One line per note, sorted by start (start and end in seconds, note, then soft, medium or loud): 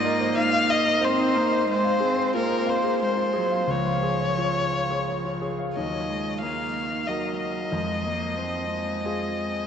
0.00 1.64 G#2 medium
0.00 1.02 A#3 medium
0.00 0.14 D#5 medium
0.00 0.36 D#5 medium
0.04 0.30 A#4 medium
0.21 0.47 C5 medium
0.37 0.63 D#4 medium
0.37 0.71 F5 medium
0.54 0.80 C5 medium
0.70 1.05 D#5 medium
0.70 0.96 D#5 medium
0.86 1.12 A#4 medium
1.01 1.37 C4 medium
1.01 1.28 C5 medium
1.01 1.69 C5 medium
1.19 1.45 D#4 medium
1.35 1.68 A#3 medium
1.35 1.62 A#4 medium
1.52 1.68 D#5 medium
1.69 2.01 G#3 medium
1.69 2.34 C5 medium
1.84 2.11 F5 medium
2.00 2.37 C4 medium
2.00 2.27 G#4 medium
2.17 2.44 C5 medium
2.34 3.03 A#3 medium
2.34 2.61 F4 medium
2.34 2.71 A#4 medium
2.50 2.77 C5 medium
2.66 3.02 C5 medium
2.66 2.94 F5 medium
2.83 3.11 G#4 medium
3.00 3.37 G#3 medium
3.00 3.28 C5 medium
3.00 3.72 C5 medium
3.16 3.44 F4 medium
3.33 3.70 F#3 medium
3.33 3.62 G#4 medium
3.51 3.69 F5 medium
3.67 5.70 C#2 medium
3.67 5.52 F3 medium
3.67 5.55 C#5 medium
3.86 4.14 F5 medium
4.03 4.31 G#4 medium
4.21 4.49 C#5 soft
4.38 4.66 F4 soft
4.55 4.83 C#5 soft
4.73 5.00 F5 soft
4.90 5.18 G#4 soft
5.08 5.35 C#5 soft
5.25 5.52 F4 soft
5.41 5.69 G#4 soft
5.59 5.75 F5 soft
5.75 7.69 D#2 medium
5.75 6.09 F#3 medium
5.75 6.37 D#5 medium
6.08 6.42 G#3 medium
6.41 7.09 A#3 soft
6.41 7.47 D#4 soft
6.41 7.08 F5 medium
7.07 7.74 F#3 soft
7.07 7.69 F#4 soft
7.07 7.69 A#4 soft
7.07 7.38 D#5 medium
7.39 9.67 D#5 medium
7.72 9.66 F2 medium
7.72 8.07 G#3 medium
8.05 8.40 A#3 medium
8.38 9.44 C4 soft
8.38 8.71 C4 medium
8.72 9.67 G#3 medium
9.05 9.66 F4 soft
9.05 9.67 G#4 soft